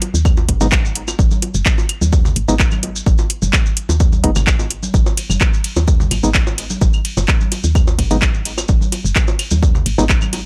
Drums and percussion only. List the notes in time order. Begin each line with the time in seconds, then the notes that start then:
0.02 closed hi-hat, high bongo
0.15 maracas
0.25 kick, claves, maracas
0.37 high bongo, maracas
0.49 kick, closed hi-hat
0.61 high conga, low conga, maracas
0.71 kick, clap, high bongo, maracas
0.85 maracas
0.95 closed hi-hat
1.08 high bongo, claves, maracas
1.19 kick, maracas
1.31 high conga, maracas
1.42 closed hi-hat, high bongo
1.55 maracas
1.66 kick, clap, maracas
1.78 high bongo, maracas
1.89 closed hi-hat, claves
2.02 high conga, maracas
2.13 kick, high bongo, maracas
2.25 low conga, maracas
2.36 closed hi-hat
2.48 high bongo, maracas
2.60 kick, clap, maracas
2.71 high conga, claves, maracas
2.83 closed hi-hat, high bongo
2.96 maracas
3.06 kick, maracas
3.18 high bongo, maracas
3.30 closed hi-hat
3.42 high conga, maracas
3.53 kick, clap, high bongo, claves, maracas
3.66 maracas
3.77 closed hi-hat
3.89 high bongo, maracas
4.00 kick, maracas
4.12 high conga, maracas
4.24 kick, closed hi-hat, high bongo
4.35 low conga, claves, maracas
4.47 kick, clap, maracas
4.59 high bongo, maracas
4.71 closed hi-hat
4.83 high conga, maracas
4.94 kick, maracas
5.06 high bongo, maracas
5.17 closed hi-hat, ride
5.30 high conga, claves, maracas
5.41 kick, clap, high bongo, maracas
5.54 maracas
5.64 closed hi-hat, ride
5.76 high bongo, maracas
5.88 kick, maracas
6.00 high conga, low conga, maracas
6.11 closed hi-hat, ride, high bongo, claves
6.23 maracas
6.34 kick, clap, maracas
6.47 high bongo, maracas
6.58 closed hi-hat, ride
6.70 high conga, maracas
6.81 kick, high bongo, maracas
6.93 claves, maracas
7.05 closed hi-hat, ride
7.17 high bongo, maracas
7.28 kick, clap, maracas
7.41 high conga, maracas
7.52 closed hi-hat, ride, high bongo
7.64 maracas
7.75 kick, claves, maracas
7.87 high bongo, maracas
7.99 kick, closed hi-hat, ride
8.11 ride, high conga, low conga, maracas
8.22 kick, clap, high bongo, maracas
8.34 maracas
8.45 closed hi-hat, ride
8.58 high bongo, claves, maracas
8.68 kick, maracas
8.81 high conga, maracas
8.92 closed hi-hat, ride, high bongo
9.05 maracas
9.15 kick, clap, maracas
9.27 high bongo, maracas
9.39 closed hi-hat, ride, claves
9.51 high conga, maracas
9.63 kick, high bongo, maracas
9.75 low conga, maracas
9.86 closed hi-hat, ride
9.98 high bongo, maracas
10.09 kick, clap, maracas
10.21 high conga, claves, maracas
10.33 closed hi-hat, ride, high bongo